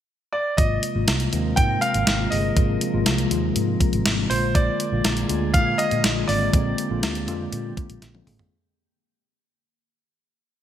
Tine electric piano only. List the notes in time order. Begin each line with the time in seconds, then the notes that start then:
0.58 C3 G#3 A#3 F4
0.95 C3 G#3 A#3 F4
1.32 C3 G#3 A#3 C4
2.19 C3 G#3 A#3 F4
2.31 C3 G#3 A#3 G#4
2.56 C3 G#3 A#3 F4
2.93 C3 G#3 A#3 F4
3.30 C3 G#3 A#3 F4
4.17 C3 G#3 A#3 D4
4.30 D3 G#3 A#3 F4
4.92 D3 G#3 A#3 F4
5.29 D3 G#3 A#3 F4
6.16 D3 G#3 A#3 F4
6.28 D3 G#3 A#3 C4
6.53 D3 G#3 A#3 C4
6.90 D3 G#3 A#3 F4
7.27 D3 G#3 A#3 F4
8.14 D3 G#3 A#3 C4
8.26 D3 G#3 A#3 G#4